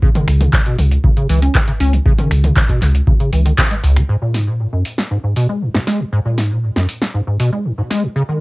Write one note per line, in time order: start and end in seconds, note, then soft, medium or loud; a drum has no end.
0.02 0.09 C#3 loud
0.02 kick loud
0.15 0.29 D#3 medium
0.15 closed hi-hat medium
0.15 mid tom medium
0.28 0.47 C#2 loud
0.28 0.42 C#3 loud
0.28 finger snap medium
0.28 open hi-hat loud
0.41 0.55 D#3 medium
0.41 closed hi-hat medium
0.41 mid tom medium
0.53 0.60 C#3 medium
0.53 kick loud
0.53 clap loud
0.66 0.77 B2 medium
0.66 closed hi-hat soft
0.79 0.98 C#2 loud
0.79 open hi-hat loud
0.79 mid tom medium
0.91 closed hi-hat medium
1.04 1.11 C#3 medium
1.04 kick loud
1.17 1.27 C#3 medium
1.17 closed hi-hat soft
1.29 1.48 C#2 medium
1.29 1.40 E3 loud
1.29 open hi-hat loud
1.42 1.56 C#4 medium
1.42 closed hi-hat medium
1.55 1.62 C#3 medium
1.55 kick loud
1.55 clap loud
1.68 1.72 C#3 medium
1.68 closed hi-hat medium
1.80 1.99 C#2 medium
1.80 1.95 C#4 loud
1.80 open hi-hat loud
1.93 1.97 C#3 medium
1.93 closed hi-hat medium
2.06 2.13 C#3 loud
2.06 kick loud
2.18 2.33 D#3 medium
2.18 closed hi-hat medium
2.18 mid tom medium
2.31 2.50 C#2 loud
2.31 2.45 C#3 loud
2.31 finger snap medium
2.31 open hi-hat loud
2.44 2.58 D#3 medium
2.44 closed hi-hat medium
2.44 mid tom medium
2.56 2.64 C#3 medium
2.56 kick loud
2.56 clap loud
2.69 2.80 B2 medium
2.69 kick medium
2.69 closed hi-hat soft
2.82 3.01 C#2 loud
2.82 clap soft
2.82 open hi-hat loud
2.82 mid tom medium
2.95 closed hi-hat medium
3.07 3.15 C#3 medium
3.07 kick loud
3.20 3.31 C#3 medium
3.20 closed hi-hat soft
3.33 3.52 C#2 medium
3.33 3.43 E3 medium
3.33 open hi-hat loud
3.46 3.53 D#3 medium
3.46 closed hi-hat medium
3.58 3.62 C#3 medium
3.58 kick loud
3.58 clap loud
3.71 3.75 G#3 medium
3.71 closed hi-hat medium
3.84 3.98 C#2 loud
3.84 4.03 C#2 medium
3.84 open hi-hat loud
3.96 4.03 E3 loud
3.96 finger snap medium
3.96 closed hi-hat medium
4.09 4.16 G#2 loud
4.22 4.36 A#2 medium
4.34 4.49 G#2 loud
4.34 snare soft
4.34 open hi-hat loud
4.47 4.61 A#2 medium
4.60 4.67 G#2 medium
4.73 4.83 F#2 medium
4.85 open hi-hat loud
4.98 snare medium
5.11 5.18 G#2 medium
5.24 5.34 G#2 medium
5.36 5.47 B2 loud
5.36 open hi-hat loud
5.49 5.63 G#3 medium
5.62 5.69 G#2 medium
5.74 5.79 G#2 medium
5.74 snare medium
5.87 6.01 G#3 loud
5.87 snare soft
5.87 open hi-hat loud
6.00 6.04 G#2 medium
6.12 6.20 G#2 loud
6.25 6.39 A#2 medium
6.38 6.52 G#2 medium
6.38 snare soft
6.38 open hi-hat loud
6.51 6.65 A#2 medium
6.63 6.70 G#2 medium
6.76 6.87 F#2 medium
6.76 snare medium
6.89 open hi-hat loud
7.02 snare medium
7.14 7.21 G#2 medium
7.27 7.37 G#2 medium
7.40 7.50 B2 medium
7.40 open hi-hat loud
7.53 7.67 G#3 medium
7.65 7.72 G#2 medium
7.78 7.82 G#2 medium
7.90 8.05 G#3 loud
7.90 snare soft
7.90 open hi-hat loud
8.03 8.07 G#2 medium
8.16 8.23 C#3 loud
8.29 8.41 D#3 medium